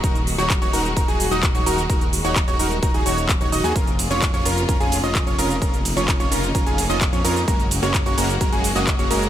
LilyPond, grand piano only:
\new Staff \with { instrumentName = "Grand piano" } { \time 4/4 \key ees \minor \tempo 4 = 129 bes''8 r16 des'''8 des'''16 bes''8 bes''16 aes''8 ees'''8 des'''16 bes''8 | bes''8 r16 des'''8 des'''16 bes''8 bes''16 aes''16 des'''8 r16 des'''16 ees'''16 aes''16 | bes''8 r16 des'''8 des'''16 bes''8 bes''16 aes''8 ees'''8 des'''16 bes''8 | bes''8 r16 des'''8 des'''16 bes''8 bes''16 aes''8 ees'''8 des'''16 bes''8 |
bes''8 r16 des'''8 des'''16 bes''8 bes''16 aes''8 ees'''8 des'''16 bes''8 | }